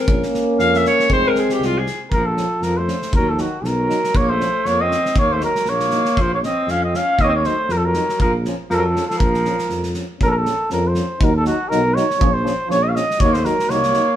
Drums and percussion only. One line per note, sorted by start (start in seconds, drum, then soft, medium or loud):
0.08 kick loud
0.23 snare soft
0.34 snare soft
0.59 snare soft
0.74 snare soft
0.85 snare soft
1.00 snare soft
1.10 kick medium
1.35 snare soft
1.49 snare soft
1.62 snare soft
1.87 snare soft
2.12 kick medium
2.37 snare soft
2.62 snare soft
2.88 snare soft
3.02 snare soft
3.13 kick loud
3.38 snare soft
3.65 snare soft
3.90 snare soft
4.04 snare soft
4.15 kick loud
4.41 snare soft
4.65 snare soft
4.91 snare soft
5.05 snare soft
5.16 kick loud
5.41 snare soft
5.55 snare soft
5.65 snare soft
5.80 snare soft
5.91 snare soft
6.05 snare soft
6.17 kick medium
6.43 snare soft
6.68 snare soft
6.94 snare soft
7.19 kick medium
7.44 snare soft
7.69 snare soft
7.94 snare soft
8.09 snare soft
8.20 kick medium
8.45 snare soft
8.70 snare soft
8.96 snare soft
9.11 snare soft
9.20 kick loud
9.34 snare soft
9.45 snare soft
9.59 snare soft
9.70 snare soft
9.83 snare soft
9.94 snare soft
10.21 kick medium
10.46 snare soft
10.70 snare soft
10.95 snare soft
11.21 kick loud
11.45 snare soft
11.71 snare soft
11.96 snare soft
12.10 snare soft
12.21 kick loud
12.46 snare soft
12.71 snare soft
12.96 snare soft
13.11 snare soft
13.20 kick loud
13.34 snare soft
13.45 snare soft
13.59 snare soft
13.70 snare soft
13.83 snare soft
13.94 snare soft